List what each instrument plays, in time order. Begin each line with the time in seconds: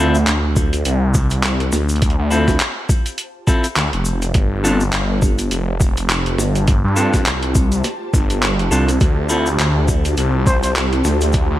Already playing: detuned saw bass D2, clean electric guitar E4 A4, ambient pad G4 C5
0.00 clean electric guitar C4 F4
0.15 ambient pad F4, cabasa
0.27 detuned saw bass D2, clap, closed hi-hat, cabasa
0.56 kick, cabasa
0.73 closed hi-hat, cabasa
0.85 detuned saw bass C2, closed hi-hat, cabasa
0.97 ambient pad A5
1.14 kick, cabasa
1.30 closed hi-hat, cabasa
1.43 clap, closed hi-hat, cabasa
1.60 closed hi-hat
1.72 detuned saw bass D2, snare, cabasa
1.89 closed hi-hat, cabasa
1.96 closed hi-hat
2.02 kick, closed hi-hat, cabasa
2.10 closed hi-hat
2.18 detuned saw bass D2
2.31 clean electric guitar C4 E4 F4 A4, cabasa
2.48 kick, snare, cabasa
2.60 clap, closed hi-hat, cabasa
2.89 kick, cabasa
3.06 closed hi-hat, cabasa
3.18 closed hi-hat, cabasa
3.47 clean electric guitar C4 E4 F4 A4, kick, cabasa
3.64 closed hi-hat, cabasa
3.76 detuned saw bass D2, clap, closed hi-hat, cabasa
3.93 detuned saw bass F1, closed hi-hat
4.05 cabasa
4.22 closed hi-hat, cabasa
4.34 detuned saw bass G1, kick, closed hi-hat, cabasa
4.64 clean electric guitar C4 D4 F4 A4, cabasa
4.80 cabasa
4.93 detuned saw bass G1, clap, closed hi-hat, cabasa
5.22 kick, cabasa
5.38 closed hi-hat, cabasa
5.51 detuned saw bass F1, closed hi-hat, cabasa
5.80 kick, cabasa
5.97 closed hi-hat, cabasa
6.09 clap, closed hi-hat, cabasa
6.26 closed hi-hat
6.38 detuned saw bass G1, snare, cabasa
6.55 closed hi-hat, cabasa
6.68 kick, closed hi-hat, cabasa
6.84 detuned saw bass G2
6.96 clean electric guitar C4 D4 F4 A4, cabasa
7.14 kick, snare, cabasa
7.26 detuned saw bass C2, clap, closed hi-hat, cabasa
7.43 closed hi-hat
7.55 kick, cabasa
7.72 closed hi-hat, cabasa
7.84 snare, closed hi-hat, cabasa
8.14 detuned saw bass G1, kick, cabasa
8.30 closed hi-hat, cabasa
8.43 clap, closed hi-hat, cabasa
8.59 closed hi-hat
8.71 detuned saw bass C2, clean electric guitar C4 D4 F4 A4, cabasa
8.89 closed hi-hat, cabasa
9.00 detuned saw bass D2, kick, closed hi-hat, cabasa
9.29 clean electric guitar C4 E4 F4 A4, cabasa
9.46 cabasa
9.59 detuned saw bass D2, clap, closed hi-hat, cabasa
9.88 kick, cabasa
10.05 closed hi-hat, cabasa
10.17 detuned saw bass C2, closed hi-hat, cabasa
10.46 trumpet C5, kick, cabasa
10.63 trumpet C5, closed hi-hat, cabasa
10.76 clap, closed hi-hat, cabasa
10.93 closed hi-hat
11.04 detuned saw bass D2, snare, cabasa
11.21 closed hi-hat, cabasa
11.33 kick, closed hi-hat, cabasa
11.50 detuned saw bass D2